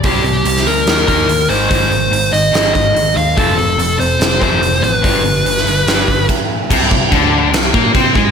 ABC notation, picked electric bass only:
X:1
M:4/4
L:1/8
Q:1/4=144
K:Gphr
V:1 name="Picked electric bass" clef=bass
C,, C,, C,, D,, E,, E,, E,, A,,, | A,,, A,,, A,,, A,,, A,,, A,,, A,,, E,, | F,,, F,,, F,,, F,,, F,,, F,,, F,,, =A,,, | G,,, G,,, G,,, G,,, G,,, G,,, z2 |
C,, C,, D,,2 C,, B,, C, A,, |]